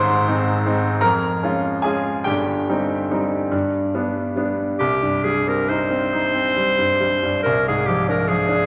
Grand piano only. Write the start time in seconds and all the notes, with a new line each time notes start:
Already playing: G#1 G#2 C5 C6
0.28 G#3 C4 D#4
0.66 G#3 C4 D#4
1.01 F2 A#4 A#5
1.43 G#3 C#4 F4
1.82 G#3 C#4 F4 G#4 G#5
2.24 G1 G2 G4 G5
2.69 G3 C4 D#4
3.11 G3 C4 D#4
3.51 G2
3.94 G3 B3 D4
4.36 G3 B3 D4
4.81 C2
5.02 G2
5.25 G3
5.47 C4
5.69 D#4
5.91 C4
6.13 D#4
6.34 C4
6.56 G3
6.78 G2
7.01 G3
7.23 G2
7.46 C2
7.68 G#2
7.88 F3
8.08 D4
8.29 F3
8.48 D4